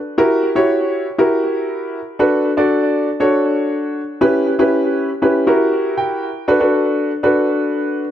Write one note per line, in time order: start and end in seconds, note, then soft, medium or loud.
0.18 0.48 E4 medium
0.18 0.48 F#4 medium
0.18 0.48 G4 medium
0.18 0.48 A#4 loud
0.55 1.05 E4 medium
0.55 1.06 F#4 medium
0.55 1.06 G4 medium
0.55 1.06 C#5 loud
1.18 1.98 E4 medium
1.18 1.99 F#4 medium
1.18 1.99 G4 medium
1.18 1.99 A#4 loud
2.19 2.50 D4 medium
2.19 2.50 F#4 medium
2.19 2.50 A4 medium
2.19 2.50 B4 loud
2.57 3.07 D4 medium
2.57 3.07 F#4 medium
2.57 3.07 A4 medium
2.57 3.07 D5 loud
3.20 4.00 D4 medium
3.20 4.00 F#4 medium
3.20 4.00 A4 medium
3.20 4.00 C#5 medium
4.21 4.51 C#4 medium
4.21 4.51 E4 medium
4.21 4.52 G4 medium
4.21 4.52 B4 loud
4.59 5.09 C#4 medium
4.59 5.09 E4 medium
4.59 5.09 G4 medium
4.59 5.09 B4 loud
5.22 5.47 C#4 medium
5.22 5.45 E4 medium
5.22 5.46 G4 medium
5.22 5.48 B4 medium
5.47 6.28 E4 medium
5.47 6.28 F#4 medium
5.47 6.28 G4 medium
5.47 6.28 A#4 loud
5.98 6.45 G5 medium
6.48 6.58 D4 medium
6.48 6.58 F#4 medium
6.48 6.58 A4 medium
6.48 6.58 B4 loud
6.60 7.10 D4 medium
6.60 7.10 F#4 medium
6.60 7.11 A4 medium
6.60 7.11 B4 loud
7.23 8.03 D4 medium
7.23 8.03 F#4 medium
7.23 8.03 A4 medium
7.23 8.04 B4 loud